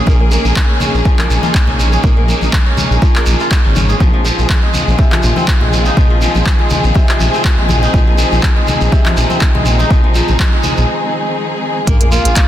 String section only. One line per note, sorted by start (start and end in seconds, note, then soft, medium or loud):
0.00 3.97 C#3 medium
0.00 11.83 G#3 medium
0.00 3.96 A#3 medium
0.00 3.97 G#4 medium
0.07 3.97 D#4 medium
4.01 11.84 D#3 medium
4.01 11.84 C4 medium
4.01 7.90 F4 medium
4.01 11.84 G#4 medium
7.94 11.84 D#4 medium
11.88 12.48 C#3 medium
11.88 12.48 G#3 medium
11.88 12.48 A#3 medium
11.88 12.48 F4 medium
11.88 12.48 G#4 medium